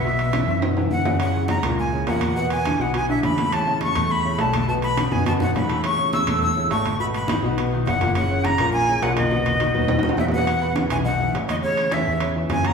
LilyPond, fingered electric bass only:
\new Staff \with { instrumentName = "Fingered electric bass" } { \clef bass \time 4/4 \key e \major \tempo 4 = 207 b,,4. fis,4. fis,4~ | fis,4. cis,4. e,4~ | e,4. b,,4. a,,4~ | a,,4. e,4. b,,4~ |
b,,4. fis,4. a,,4~ | a,,4. e,4. gis,,4~ | gis,,4. b,,4. fis,,4~ | fis,,4. ais,,4. b,,4~ |
b,,4. dis,4. e,4~ | e,4. b,,4. a,,4~ | a,,4. e,4. fis,4 | }